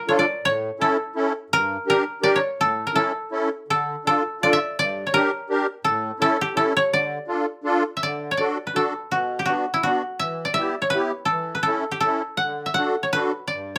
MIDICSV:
0, 0, Header, 1, 3, 480
1, 0, Start_track
1, 0, Key_signature, -1, "minor"
1, 0, Tempo, 359928
1, 584, Time_signature, 3, 2, 24, 8
1, 9705, Tempo, 365631
1, 10689, Key_signature, 2, "major"
1, 18242, End_track
2, 0, Start_track
2, 0, Title_t, "Koto"
2, 0, Program_c, 0, 107
2, 0, Note_on_c, 0, 70, 72
2, 114, Note_on_c, 0, 73, 78
2, 251, Note_on_c, 0, 74, 85
2, 331, Note_off_c, 0, 73, 0
2, 603, Note_on_c, 0, 73, 102
2, 683, Note_off_c, 0, 74, 0
2, 1086, Note_on_c, 0, 69, 80
2, 1166, Note_off_c, 0, 70, 0
2, 2041, Note_on_c, 0, 70, 121
2, 2121, Note_off_c, 0, 69, 0
2, 2525, Note_off_c, 0, 70, 0
2, 2530, Note_on_c, 0, 70, 102
2, 2812, Note_off_c, 0, 73, 0
2, 2980, Note_on_c, 0, 74, 103
2, 3142, Note_on_c, 0, 73, 85
2, 3222, Note_off_c, 0, 74, 0
2, 3476, Note_on_c, 0, 69, 88
2, 3556, Note_off_c, 0, 70, 0
2, 3823, Note_on_c, 0, 70, 70
2, 3903, Note_off_c, 0, 69, 0
2, 3941, Note_on_c, 0, 69, 100
2, 4021, Note_off_c, 0, 70, 0
2, 4934, Note_off_c, 0, 69, 0
2, 4939, Note_on_c, 0, 69, 96
2, 5351, Note_off_c, 0, 73, 0
2, 5424, Note_off_c, 0, 69, 0
2, 5429, Note_on_c, 0, 69, 99
2, 5909, Note_on_c, 0, 74, 103
2, 6040, Note_on_c, 0, 76, 104
2, 6383, Note_off_c, 0, 74, 0
2, 6388, Note_on_c, 0, 74, 115
2, 6755, Note_on_c, 0, 73, 60
2, 6835, Note_off_c, 0, 74, 0
2, 6852, Note_on_c, 0, 70, 110
2, 6932, Note_off_c, 0, 69, 0
2, 7795, Note_on_c, 0, 69, 90
2, 7875, Note_off_c, 0, 70, 0
2, 8031, Note_off_c, 0, 76, 0
2, 8285, Note_off_c, 0, 69, 0
2, 8290, Note_on_c, 0, 69, 100
2, 8553, Note_on_c, 0, 67, 87
2, 8754, Note_off_c, 0, 69, 0
2, 8760, Note_on_c, 0, 69, 91
2, 8840, Note_off_c, 0, 69, 0
2, 8965, Note_off_c, 0, 73, 0
2, 9022, Note_on_c, 0, 73, 100
2, 9247, Note_on_c, 0, 74, 88
2, 9327, Note_off_c, 0, 73, 0
2, 10610, Note_on_c, 0, 76, 76
2, 10688, Note_off_c, 0, 74, 0
2, 10693, Note_on_c, 0, 74, 93
2, 11064, Note_on_c, 0, 73, 80
2, 11139, Note_off_c, 0, 74, 0
2, 11145, Note_on_c, 0, 74, 73
2, 11223, Note_off_c, 0, 73, 0
2, 11249, Note_off_c, 0, 67, 0
2, 11530, Note_on_c, 0, 71, 64
2, 11651, Note_on_c, 0, 69, 84
2, 12117, Note_on_c, 0, 66, 82
2, 12480, Note_on_c, 0, 67, 71
2, 12559, Note_off_c, 0, 66, 0
2, 12564, Note_on_c, 0, 66, 84
2, 12570, Note_off_c, 0, 76, 0
2, 12643, Note_off_c, 0, 67, 0
2, 12934, Note_on_c, 0, 64, 79
2, 13012, Note_off_c, 0, 64, 0
2, 13055, Note_off_c, 0, 66, 0
2, 13060, Note_on_c, 0, 66, 89
2, 13246, Note_off_c, 0, 74, 0
2, 13535, Note_on_c, 0, 76, 92
2, 13861, Note_off_c, 0, 71, 0
2, 13869, Note_on_c, 0, 74, 87
2, 13982, Note_off_c, 0, 76, 0
2, 13987, Note_on_c, 0, 76, 98
2, 14150, Note_off_c, 0, 69, 0
2, 14352, Note_on_c, 0, 73, 69
2, 14431, Note_off_c, 0, 74, 0
2, 14461, Note_on_c, 0, 71, 101
2, 14925, Note_on_c, 0, 69, 91
2, 15305, Note_off_c, 0, 71, 0
2, 15310, Note_on_c, 0, 71, 68
2, 15389, Note_off_c, 0, 71, 0
2, 15411, Note_off_c, 0, 69, 0
2, 15416, Note_on_c, 0, 69, 83
2, 15793, Note_on_c, 0, 67, 74
2, 15872, Note_off_c, 0, 66, 0
2, 15872, Note_off_c, 0, 67, 0
2, 15906, Note_off_c, 0, 69, 0
2, 15911, Note_on_c, 0, 69, 89
2, 15947, Note_off_c, 0, 76, 0
2, 16394, Note_on_c, 0, 78, 86
2, 16527, Note_off_c, 0, 73, 0
2, 16770, Note_on_c, 0, 76, 71
2, 16873, Note_off_c, 0, 78, 0
2, 16879, Note_on_c, 0, 78, 102
2, 17256, Note_on_c, 0, 73, 73
2, 17335, Note_off_c, 0, 73, 0
2, 17384, Note_on_c, 0, 71, 104
2, 17841, Note_on_c, 0, 74, 88
2, 18242, Note_off_c, 0, 69, 0
2, 18242, Note_off_c, 0, 71, 0
2, 18242, Note_off_c, 0, 74, 0
2, 18242, Note_off_c, 0, 76, 0
2, 18242, Note_off_c, 0, 78, 0
2, 18242, End_track
3, 0, Start_track
3, 0, Title_t, "Accordion"
3, 0, Program_c, 1, 21
3, 102, Note_on_c, 1, 62, 66
3, 107, Note_on_c, 1, 65, 66
3, 113, Note_on_c, 1, 69, 81
3, 337, Note_off_c, 1, 62, 0
3, 340, Note_off_c, 1, 65, 0
3, 343, Note_off_c, 1, 69, 0
3, 579, Note_on_c, 1, 45, 68
3, 944, Note_off_c, 1, 45, 0
3, 1061, Note_on_c, 1, 61, 86
3, 1065, Note_on_c, 1, 64, 58
3, 1069, Note_on_c, 1, 69, 78
3, 1293, Note_off_c, 1, 61, 0
3, 1295, Note_off_c, 1, 64, 0
3, 1297, Note_off_c, 1, 69, 0
3, 1540, Note_on_c, 1, 64, 71
3, 1544, Note_on_c, 1, 61, 77
3, 1549, Note_on_c, 1, 69, 83
3, 1768, Note_off_c, 1, 64, 0
3, 1770, Note_off_c, 1, 61, 0
3, 1773, Note_off_c, 1, 69, 0
3, 2000, Note_on_c, 1, 43, 81
3, 2366, Note_off_c, 1, 43, 0
3, 2489, Note_on_c, 1, 67, 80
3, 2494, Note_on_c, 1, 62, 73
3, 2498, Note_on_c, 1, 70, 83
3, 2720, Note_off_c, 1, 67, 0
3, 2723, Note_off_c, 1, 62, 0
3, 2725, Note_off_c, 1, 70, 0
3, 2955, Note_on_c, 1, 62, 74
3, 2962, Note_on_c, 1, 67, 70
3, 2971, Note_on_c, 1, 70, 81
3, 3190, Note_off_c, 1, 62, 0
3, 3194, Note_off_c, 1, 67, 0
3, 3198, Note_off_c, 1, 70, 0
3, 3452, Note_on_c, 1, 45, 65
3, 3814, Note_off_c, 1, 45, 0
3, 3919, Note_on_c, 1, 61, 58
3, 3923, Note_on_c, 1, 64, 66
3, 3940, Note_on_c, 1, 69, 76
3, 4159, Note_off_c, 1, 61, 0
3, 4161, Note_off_c, 1, 64, 0
3, 4170, Note_off_c, 1, 69, 0
3, 4418, Note_on_c, 1, 64, 62
3, 4419, Note_on_c, 1, 61, 64
3, 4434, Note_on_c, 1, 69, 82
3, 4656, Note_off_c, 1, 64, 0
3, 4657, Note_off_c, 1, 61, 0
3, 4664, Note_off_c, 1, 69, 0
3, 4909, Note_on_c, 1, 50, 70
3, 5280, Note_off_c, 1, 50, 0
3, 5398, Note_on_c, 1, 62, 81
3, 5418, Note_on_c, 1, 69, 83
3, 5420, Note_on_c, 1, 65, 65
3, 5633, Note_off_c, 1, 62, 0
3, 5643, Note_off_c, 1, 69, 0
3, 5644, Note_off_c, 1, 65, 0
3, 5881, Note_on_c, 1, 62, 78
3, 5892, Note_on_c, 1, 65, 65
3, 5897, Note_on_c, 1, 69, 83
3, 6113, Note_off_c, 1, 62, 0
3, 6119, Note_off_c, 1, 65, 0
3, 6121, Note_off_c, 1, 69, 0
3, 6376, Note_on_c, 1, 43, 75
3, 6733, Note_off_c, 1, 43, 0
3, 6851, Note_on_c, 1, 62, 72
3, 6860, Note_on_c, 1, 67, 58
3, 6867, Note_on_c, 1, 70, 87
3, 7078, Note_off_c, 1, 62, 0
3, 7082, Note_off_c, 1, 67, 0
3, 7086, Note_off_c, 1, 70, 0
3, 7330, Note_on_c, 1, 67, 70
3, 7331, Note_on_c, 1, 62, 80
3, 7341, Note_on_c, 1, 70, 84
3, 7554, Note_off_c, 1, 62, 0
3, 7554, Note_off_c, 1, 67, 0
3, 7559, Note_off_c, 1, 70, 0
3, 7797, Note_on_c, 1, 45, 81
3, 8156, Note_off_c, 1, 45, 0
3, 8262, Note_on_c, 1, 61, 71
3, 8265, Note_on_c, 1, 64, 67
3, 8282, Note_on_c, 1, 69, 86
3, 8497, Note_off_c, 1, 61, 0
3, 8498, Note_off_c, 1, 64, 0
3, 8507, Note_off_c, 1, 69, 0
3, 8738, Note_on_c, 1, 61, 80
3, 8751, Note_on_c, 1, 64, 76
3, 8751, Note_on_c, 1, 69, 81
3, 8975, Note_off_c, 1, 61, 0
3, 8982, Note_off_c, 1, 64, 0
3, 8982, Note_off_c, 1, 69, 0
3, 9212, Note_on_c, 1, 50, 74
3, 9584, Note_off_c, 1, 50, 0
3, 9703, Note_on_c, 1, 62, 64
3, 9708, Note_on_c, 1, 65, 60
3, 9724, Note_on_c, 1, 69, 69
3, 9940, Note_off_c, 1, 62, 0
3, 9943, Note_off_c, 1, 65, 0
3, 9951, Note_off_c, 1, 69, 0
3, 10181, Note_on_c, 1, 62, 82
3, 10192, Note_on_c, 1, 65, 87
3, 10198, Note_on_c, 1, 69, 92
3, 10430, Note_off_c, 1, 62, 0
3, 10435, Note_off_c, 1, 65, 0
3, 10438, Note_off_c, 1, 69, 0
3, 10683, Note_on_c, 1, 50, 63
3, 11055, Note_off_c, 1, 50, 0
3, 11171, Note_on_c, 1, 62, 58
3, 11178, Note_on_c, 1, 66, 55
3, 11180, Note_on_c, 1, 69, 80
3, 11408, Note_off_c, 1, 62, 0
3, 11411, Note_off_c, 1, 66, 0
3, 11412, Note_off_c, 1, 69, 0
3, 11635, Note_on_c, 1, 62, 66
3, 11642, Note_on_c, 1, 66, 64
3, 11650, Note_on_c, 1, 69, 74
3, 11879, Note_off_c, 1, 62, 0
3, 11882, Note_off_c, 1, 66, 0
3, 11886, Note_off_c, 1, 69, 0
3, 12117, Note_on_c, 1, 47, 71
3, 12484, Note_off_c, 1, 47, 0
3, 12585, Note_on_c, 1, 59, 65
3, 12586, Note_on_c, 1, 62, 55
3, 12593, Note_on_c, 1, 66, 72
3, 12829, Note_off_c, 1, 59, 0
3, 12830, Note_off_c, 1, 62, 0
3, 12833, Note_off_c, 1, 66, 0
3, 13065, Note_on_c, 1, 62, 60
3, 13069, Note_on_c, 1, 59, 73
3, 13083, Note_on_c, 1, 66, 68
3, 13307, Note_off_c, 1, 62, 0
3, 13309, Note_off_c, 1, 59, 0
3, 13316, Note_off_c, 1, 66, 0
3, 13547, Note_on_c, 1, 52, 67
3, 13911, Note_off_c, 1, 52, 0
3, 14035, Note_on_c, 1, 59, 65
3, 14039, Note_on_c, 1, 67, 74
3, 14048, Note_on_c, 1, 64, 53
3, 14263, Note_off_c, 1, 59, 0
3, 14265, Note_off_c, 1, 67, 0
3, 14270, Note_off_c, 1, 64, 0
3, 14513, Note_on_c, 1, 64, 67
3, 14515, Note_on_c, 1, 59, 70
3, 14528, Note_on_c, 1, 67, 83
3, 14739, Note_off_c, 1, 64, 0
3, 14740, Note_off_c, 1, 59, 0
3, 14746, Note_off_c, 1, 67, 0
3, 14982, Note_on_c, 1, 52, 66
3, 15343, Note_off_c, 1, 52, 0
3, 15463, Note_on_c, 1, 61, 60
3, 15471, Note_on_c, 1, 64, 57
3, 15480, Note_on_c, 1, 69, 71
3, 15697, Note_off_c, 1, 61, 0
3, 15701, Note_off_c, 1, 64, 0
3, 15705, Note_off_c, 1, 69, 0
3, 15962, Note_on_c, 1, 61, 60
3, 15965, Note_on_c, 1, 64, 62
3, 15968, Note_on_c, 1, 69, 65
3, 16195, Note_off_c, 1, 61, 0
3, 16197, Note_off_c, 1, 64, 0
3, 16198, Note_off_c, 1, 69, 0
3, 16460, Note_on_c, 1, 50, 59
3, 16818, Note_off_c, 1, 50, 0
3, 16928, Note_on_c, 1, 66, 56
3, 16929, Note_on_c, 1, 62, 66
3, 16937, Note_on_c, 1, 69, 72
3, 17159, Note_off_c, 1, 66, 0
3, 17160, Note_off_c, 1, 62, 0
3, 17164, Note_off_c, 1, 69, 0
3, 17401, Note_on_c, 1, 62, 62
3, 17410, Note_on_c, 1, 66, 59
3, 17420, Note_on_c, 1, 69, 79
3, 17632, Note_off_c, 1, 62, 0
3, 17637, Note_off_c, 1, 66, 0
3, 17641, Note_off_c, 1, 69, 0
3, 17879, Note_on_c, 1, 43, 63
3, 18235, Note_off_c, 1, 43, 0
3, 18242, End_track
0, 0, End_of_file